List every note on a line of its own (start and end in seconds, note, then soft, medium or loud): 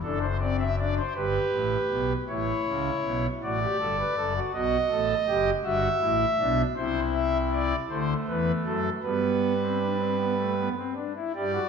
0.03 1.00 F#1 medium
0.03 1.00 F#2 medium
0.03 0.26 D4 medium
0.03 0.19 A4 medium
0.21 0.37 C5 medium
0.40 0.63 C4 medium
0.40 0.56 D5 medium
0.60 0.75 E5 medium
0.79 1.01 D4 medium
0.79 0.94 D5 medium
0.98 1.13 C5 medium
1.15 1.38 G1 medium
1.15 1.38 G2 medium
1.15 2.13 G4 medium
1.15 2.13 B4 medium
1.53 1.76 A1 medium
1.53 1.77 A2 medium
1.91 2.14 B1 medium
1.91 2.14 B2 medium
2.29 2.52 A1 medium
2.29 2.53 A2 medium
2.29 3.26 E4 medium
2.29 3.26 C#5 soft
2.67 2.91 C#2 medium
2.67 2.90 C#3 medium
3.04 3.28 B1 medium
3.04 3.28 B2 medium
3.43 3.66 A1 medium
3.43 3.66 A2 medium
3.43 3.59 F#4 medium
3.43 4.39 D5 medium
3.61 3.77 G4 medium
3.80 4.03 G1 medium
3.80 4.03 G2 medium
3.80 3.96 A4 medium
3.99 4.15 B4 medium
4.17 4.40 F#1 medium
4.17 4.40 F#2 medium
4.17 4.33 A4 medium
4.36 4.52 F#4 medium
4.54 4.77 B1 medium
4.54 4.77 B2 medium
4.54 4.77 F#4 medium
4.54 5.50 D#5 medium
4.90 5.14 A1 medium
4.90 5.14 A2 medium
4.90 5.14 A4 medium
5.28 5.51 F#1 medium
5.28 5.51 F#2 medium
5.28 5.51 G4 medium
5.64 5.88 G1 medium
5.64 5.88 G2 medium
5.64 5.88 F#4 loud
5.64 6.61 E5 medium
6.02 6.25 A1 medium
6.02 6.25 A2 medium
6.02 6.25 E4 medium
6.40 6.63 B1 medium
6.40 6.63 B2 medium
6.40 6.63 D4 medium
6.77 7.74 C2 medium
6.77 7.74 C3 medium
6.77 7.74 E4 medium
6.77 7.00 C5 medium
7.14 7.38 E5 medium
7.53 7.76 D5 medium
7.90 8.14 D2 medium
7.90 8.14 D3 medium
7.90 8.88 A3 medium
7.90 8.14 C5 medium
8.28 8.52 E2 medium
8.28 8.52 E3 medium
8.28 8.52 B4 medium
8.66 8.89 F#2 medium
8.66 8.89 F#3 medium
8.66 8.89 A4 medium
9.03 10.69 G2 medium
9.03 10.69 G3 medium
9.03 9.53 B3 medium
9.03 10.69 B4 medium
9.62 9.78 C4 medium
9.80 9.97 D4 medium
9.99 10.16 C4 medium
10.18 10.35 B3 medium
10.37 10.54 A3 soft
10.58 10.74 B3 medium
10.77 10.94 C4 medium
10.95 11.12 D4 medium
11.16 11.32 E4 soft
11.35 11.59 G2 medium
11.35 11.59 G3 medium
11.35 11.52 G4 medium
11.35 11.69 D5 medium
11.54 11.69 F#4 medium